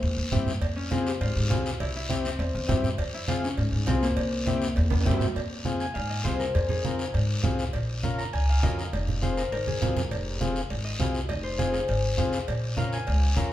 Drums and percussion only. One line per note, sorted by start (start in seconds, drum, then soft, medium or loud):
0.03 high conga soft
0.03 long guiro medium
0.32 high conga medium
0.32 low conga medium
0.32 short guiro medium
0.47 low conga medium
0.47 short guiro medium
0.61 cowbell loud
0.61 high conga soft
0.61 long guiro medium
0.91 cowbell medium
0.91 high conga medium
0.91 short guiro medium
1.07 short guiro medium
1.21 cowbell medium
1.21 high conga soft
1.21 long guiro medium
1.51 cowbell medium
1.51 high conga medium
1.51 low timbale medium
1.51 short guiro medium
1.66 short guiro medium
1.80 cowbell loud
1.80 high conga soft
1.80 long guiro medium
2.10 cowbell medium
2.10 high conga medium
2.10 short guiro medium
2.25 short guiro medium
2.39 cowbell medium
2.39 long guiro medium
2.69 cowbell medium
2.69 high conga medium
2.69 low conga medium
2.69 low timbale medium
2.69 short guiro medium
2.84 low conga medium
2.84 short guiro medium
2.98 cowbell loud
2.98 high conga soft
2.98 long guiro medium
3.28 cowbell medium
3.28 high conga medium
3.28 short guiro medium
3.44 short guiro medium
3.57 cowbell medium
3.57 high conga soft
3.57 long guiro medium
3.87 cowbell medium
3.87 high conga medium
3.87 low timbale medium
3.87 short guiro medium
4.03 short guiro medium
4.17 cowbell loud
4.17 high conga soft
4.17 long guiro medium
4.46 cowbell medium
4.46 high conga loud
4.46 short guiro medium
4.62 short guiro medium
4.76 cowbell medium
4.76 high conga soft
4.76 long guiro medium
4.90 high conga medium
4.90 high timbale loud
5.01 high timbale medium
5.06 cowbell medium
5.06 high conga medium
5.06 short guiro medium
5.11 low timbale medium
5.20 low conga medium
5.20 low timbale medium
5.20 short guiro medium
5.35 cowbell loud
5.35 high conga soft
5.35 long guiro medium
5.65 high conga medium
5.65 short guiro medium
5.80 short guiro medium
5.95 cowbell medium
5.95 high conga soft
5.95 long guiro medium
6.25 high conga medium
6.25 short guiro medium
6.40 short guiro medium
6.55 cowbell medium
6.55 high conga soft
6.55 long guiro medium
6.69 low conga medium
6.85 high conga medium
6.85 short guiro medium
6.99 short guiro medium
7.14 cowbell medium
7.14 high conga soft
7.14 long guiro medium
7.44 high conga medium
7.44 low conga medium
7.44 low timbale medium
7.44 short guiro medium
7.59 short guiro medium
7.73 cowbell loud
7.73 high conga soft
7.73 long guiro medium
8.04 high conga medium
8.04 short guiro medium
8.19 short guiro medium
8.33 cowbell medium
8.33 high conga soft
8.33 long guiro medium
8.63 high conga medium
8.63 low timbale medium
8.63 short guiro medium
8.79 short guiro medium
8.93 cowbell loud
8.93 high conga soft
8.93 long guiro medium
9.08 low conga medium
9.23 high conga medium
9.23 short guiro medium
9.37 short guiro medium
9.52 cowbell medium
9.52 high conga soft
9.52 long guiro medium
9.67 high conga medium
9.82 low conga loud
9.82 low timbale medium
9.82 short guiro medium
9.97 low conga medium
9.97 short guiro medium
10.11 cowbell loud
10.11 high conga soft
10.11 long guiro medium
10.41 high conga medium
10.41 short guiro medium
10.56 short guiro medium
10.70 cowbell medium
10.70 high conga soft
10.70 long guiro medium
11.00 high conga medium
11.00 low timbale medium
11.00 short guiro medium
11.14 short guiro medium
11.29 cowbell loud
11.29 high conga soft
11.29 long guiro medium
11.59 high conga medium
11.59 short guiro medium
11.74 short guiro medium
11.88 cowbell medium
11.88 high conga soft
11.88 long guiro medium
12.18 high conga medium
12.18 low conga medium
12.18 short guiro medium
12.33 short guiro medium
12.48 cowbell loud
12.48 high conga soft
12.48 long guiro medium
12.77 high conga medium
12.77 short guiro medium
12.93 short guiro medium
13.07 cowbell medium
13.07 high conga soft
13.07 long guiro medium
13.36 high conga medium
13.36 short guiro medium